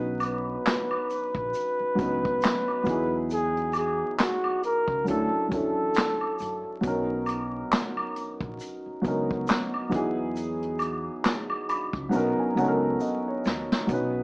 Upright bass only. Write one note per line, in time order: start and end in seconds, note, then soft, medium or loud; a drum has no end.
0.00 0.54 B1 loud
1.35 1.51 A#1 medium
1.80 muted upright bass stroke soft
1.99 2.37 C#2 medium
2.87 4.01 E2 loud
4.88 5.04 C#2 medium
5.08 5.30 D2 loud
5.34 muted upright bass stroke soft
5.52 5.90 E2 medium
6.40 6.62 F#2 medium
6.84 7.60 B1 loud
8.41 8.57 A#1 medium
8.86 muted upright bass stroke soft
9.05 9.43 C#2 medium
9.93 11.07 E2 medium
11.94 12.10 C#2 medium
12.13 12.35 B1 medium
12.38 muted upright bass stroke soft
12.57 12.95 C#2 medium
13.45 13.67 D#2 medium
13.89 14.23 B1 loud